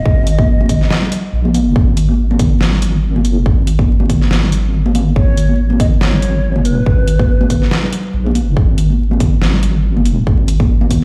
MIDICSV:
0, 0, Header, 1, 4, 480
1, 0, Start_track
1, 0, Key_signature, 5, "minor"
1, 0, Tempo, 425532
1, 62, Time_signature, 4, 2, 24, 8
1, 12455, End_track
2, 0, Start_track
2, 0, Title_t, "Ney"
2, 0, Program_c, 0, 77
2, 0, Note_on_c, 0, 75, 97
2, 1262, Note_off_c, 0, 75, 0
2, 5821, Note_on_c, 0, 73, 101
2, 6268, Note_off_c, 0, 73, 0
2, 6541, Note_on_c, 0, 75, 108
2, 6609, Note_off_c, 0, 75, 0
2, 6781, Note_on_c, 0, 73, 101
2, 7501, Note_on_c, 0, 71, 94
2, 7518, Note_off_c, 0, 73, 0
2, 8942, Note_off_c, 0, 71, 0
2, 12455, End_track
3, 0, Start_track
3, 0, Title_t, "Wobble bass"
3, 0, Program_c, 1, 39
3, 62, Note_on_c, 1, 32, 102
3, 1005, Note_off_c, 1, 32, 0
3, 1502, Note_on_c, 1, 34, 97
3, 1965, Note_off_c, 1, 34, 0
3, 1982, Note_on_c, 1, 32, 102
3, 2925, Note_off_c, 1, 32, 0
3, 2941, Note_on_c, 1, 32, 96
3, 3606, Note_off_c, 1, 32, 0
3, 3606, Note_on_c, 1, 31, 96
3, 3884, Note_off_c, 1, 31, 0
3, 3901, Note_on_c, 1, 32, 99
3, 4845, Note_off_c, 1, 32, 0
3, 4861, Note_on_c, 1, 32, 98
3, 5804, Note_off_c, 1, 32, 0
3, 5821, Note_on_c, 1, 32, 98
3, 6765, Note_off_c, 1, 32, 0
3, 6781, Note_on_c, 1, 32, 103
3, 7724, Note_off_c, 1, 32, 0
3, 7741, Note_on_c, 1, 32, 98
3, 8685, Note_off_c, 1, 32, 0
3, 9182, Note_on_c, 1, 34, 97
3, 9645, Note_off_c, 1, 34, 0
3, 9662, Note_on_c, 1, 32, 99
3, 10605, Note_off_c, 1, 32, 0
3, 10623, Note_on_c, 1, 32, 100
3, 11565, Note_off_c, 1, 32, 0
3, 11582, Note_on_c, 1, 32, 97
3, 12455, Note_off_c, 1, 32, 0
3, 12455, End_track
4, 0, Start_track
4, 0, Title_t, "Drums"
4, 62, Note_on_c, 9, 36, 124
4, 175, Note_off_c, 9, 36, 0
4, 302, Note_on_c, 9, 42, 88
4, 415, Note_off_c, 9, 42, 0
4, 435, Note_on_c, 9, 36, 109
4, 437, Note_on_c, 9, 63, 75
4, 548, Note_off_c, 9, 36, 0
4, 550, Note_off_c, 9, 63, 0
4, 685, Note_on_c, 9, 63, 87
4, 782, Note_on_c, 9, 36, 67
4, 782, Note_on_c, 9, 42, 84
4, 798, Note_off_c, 9, 63, 0
4, 895, Note_off_c, 9, 36, 0
4, 895, Note_off_c, 9, 42, 0
4, 916, Note_on_c, 9, 38, 38
4, 1021, Note_off_c, 9, 38, 0
4, 1021, Note_on_c, 9, 38, 122
4, 1134, Note_off_c, 9, 38, 0
4, 1145, Note_on_c, 9, 64, 78
4, 1258, Note_off_c, 9, 64, 0
4, 1261, Note_on_c, 9, 42, 86
4, 1374, Note_off_c, 9, 42, 0
4, 1637, Note_on_c, 9, 63, 85
4, 1741, Note_off_c, 9, 63, 0
4, 1741, Note_on_c, 9, 42, 79
4, 1741, Note_on_c, 9, 63, 90
4, 1854, Note_off_c, 9, 42, 0
4, 1854, Note_off_c, 9, 63, 0
4, 1982, Note_on_c, 9, 36, 125
4, 2095, Note_off_c, 9, 36, 0
4, 2222, Note_on_c, 9, 42, 86
4, 2334, Note_off_c, 9, 42, 0
4, 2354, Note_on_c, 9, 63, 78
4, 2467, Note_off_c, 9, 63, 0
4, 2605, Note_on_c, 9, 63, 103
4, 2701, Note_on_c, 9, 42, 84
4, 2702, Note_on_c, 9, 36, 113
4, 2717, Note_off_c, 9, 63, 0
4, 2814, Note_off_c, 9, 42, 0
4, 2815, Note_off_c, 9, 36, 0
4, 2941, Note_on_c, 9, 38, 124
4, 3054, Note_off_c, 9, 38, 0
4, 3072, Note_on_c, 9, 64, 80
4, 3181, Note_on_c, 9, 42, 85
4, 3185, Note_off_c, 9, 64, 0
4, 3294, Note_off_c, 9, 42, 0
4, 3563, Note_on_c, 9, 63, 86
4, 3662, Note_on_c, 9, 42, 80
4, 3676, Note_off_c, 9, 63, 0
4, 3775, Note_off_c, 9, 42, 0
4, 3901, Note_on_c, 9, 36, 119
4, 4014, Note_off_c, 9, 36, 0
4, 4142, Note_on_c, 9, 42, 81
4, 4255, Note_off_c, 9, 42, 0
4, 4273, Note_on_c, 9, 63, 67
4, 4275, Note_on_c, 9, 36, 107
4, 4385, Note_off_c, 9, 63, 0
4, 4387, Note_off_c, 9, 36, 0
4, 4513, Note_on_c, 9, 63, 88
4, 4621, Note_on_c, 9, 36, 66
4, 4621, Note_on_c, 9, 42, 82
4, 4625, Note_off_c, 9, 63, 0
4, 4734, Note_off_c, 9, 36, 0
4, 4734, Note_off_c, 9, 42, 0
4, 4754, Note_on_c, 9, 38, 39
4, 4861, Note_off_c, 9, 38, 0
4, 4861, Note_on_c, 9, 38, 124
4, 4974, Note_off_c, 9, 38, 0
4, 5003, Note_on_c, 9, 64, 78
4, 5101, Note_on_c, 9, 42, 82
4, 5116, Note_off_c, 9, 64, 0
4, 5214, Note_off_c, 9, 42, 0
4, 5479, Note_on_c, 9, 63, 98
4, 5582, Note_on_c, 9, 42, 76
4, 5584, Note_off_c, 9, 63, 0
4, 5584, Note_on_c, 9, 63, 101
4, 5694, Note_off_c, 9, 42, 0
4, 5697, Note_off_c, 9, 63, 0
4, 5821, Note_on_c, 9, 36, 116
4, 5934, Note_off_c, 9, 36, 0
4, 6062, Note_on_c, 9, 42, 75
4, 6174, Note_off_c, 9, 42, 0
4, 6189, Note_on_c, 9, 63, 67
4, 6302, Note_off_c, 9, 63, 0
4, 6430, Note_on_c, 9, 63, 86
4, 6541, Note_on_c, 9, 36, 112
4, 6541, Note_on_c, 9, 42, 79
4, 6542, Note_off_c, 9, 63, 0
4, 6654, Note_off_c, 9, 36, 0
4, 6654, Note_off_c, 9, 42, 0
4, 6781, Note_on_c, 9, 38, 117
4, 6894, Note_off_c, 9, 38, 0
4, 6913, Note_on_c, 9, 64, 82
4, 7021, Note_on_c, 9, 42, 75
4, 7026, Note_off_c, 9, 64, 0
4, 7134, Note_off_c, 9, 42, 0
4, 7396, Note_on_c, 9, 63, 87
4, 7501, Note_on_c, 9, 42, 76
4, 7509, Note_off_c, 9, 63, 0
4, 7614, Note_off_c, 9, 42, 0
4, 7742, Note_on_c, 9, 36, 114
4, 7854, Note_off_c, 9, 36, 0
4, 7981, Note_on_c, 9, 42, 79
4, 8094, Note_off_c, 9, 42, 0
4, 8115, Note_on_c, 9, 36, 101
4, 8116, Note_on_c, 9, 63, 68
4, 8228, Note_off_c, 9, 36, 0
4, 8228, Note_off_c, 9, 63, 0
4, 8356, Note_on_c, 9, 63, 87
4, 8461, Note_on_c, 9, 42, 77
4, 8462, Note_on_c, 9, 36, 64
4, 8468, Note_off_c, 9, 63, 0
4, 8574, Note_off_c, 9, 36, 0
4, 8574, Note_off_c, 9, 42, 0
4, 8594, Note_on_c, 9, 38, 36
4, 8701, Note_off_c, 9, 38, 0
4, 8701, Note_on_c, 9, 38, 117
4, 8814, Note_off_c, 9, 38, 0
4, 8830, Note_on_c, 9, 64, 73
4, 8941, Note_on_c, 9, 42, 81
4, 8942, Note_off_c, 9, 64, 0
4, 9053, Note_off_c, 9, 42, 0
4, 9322, Note_on_c, 9, 63, 81
4, 9417, Note_off_c, 9, 63, 0
4, 9417, Note_on_c, 9, 63, 81
4, 9421, Note_on_c, 9, 42, 75
4, 9530, Note_off_c, 9, 63, 0
4, 9534, Note_off_c, 9, 42, 0
4, 9662, Note_on_c, 9, 36, 114
4, 9775, Note_off_c, 9, 36, 0
4, 9902, Note_on_c, 9, 42, 79
4, 10014, Note_off_c, 9, 42, 0
4, 10038, Note_on_c, 9, 63, 66
4, 10151, Note_off_c, 9, 63, 0
4, 10277, Note_on_c, 9, 63, 85
4, 10381, Note_on_c, 9, 42, 81
4, 10383, Note_on_c, 9, 36, 102
4, 10390, Note_off_c, 9, 63, 0
4, 10494, Note_off_c, 9, 42, 0
4, 10495, Note_off_c, 9, 36, 0
4, 10622, Note_on_c, 9, 38, 115
4, 10735, Note_off_c, 9, 38, 0
4, 10755, Note_on_c, 9, 64, 87
4, 10861, Note_on_c, 9, 42, 76
4, 10868, Note_off_c, 9, 64, 0
4, 10974, Note_off_c, 9, 42, 0
4, 11242, Note_on_c, 9, 63, 86
4, 11342, Note_on_c, 9, 42, 78
4, 11355, Note_off_c, 9, 63, 0
4, 11455, Note_off_c, 9, 42, 0
4, 11582, Note_on_c, 9, 36, 111
4, 11695, Note_off_c, 9, 36, 0
4, 11822, Note_on_c, 9, 42, 86
4, 11934, Note_off_c, 9, 42, 0
4, 11955, Note_on_c, 9, 36, 100
4, 11955, Note_on_c, 9, 63, 65
4, 12067, Note_off_c, 9, 63, 0
4, 12068, Note_off_c, 9, 36, 0
4, 12194, Note_on_c, 9, 63, 90
4, 12302, Note_on_c, 9, 36, 60
4, 12302, Note_on_c, 9, 42, 88
4, 12307, Note_off_c, 9, 63, 0
4, 12414, Note_off_c, 9, 42, 0
4, 12415, Note_off_c, 9, 36, 0
4, 12455, End_track
0, 0, End_of_file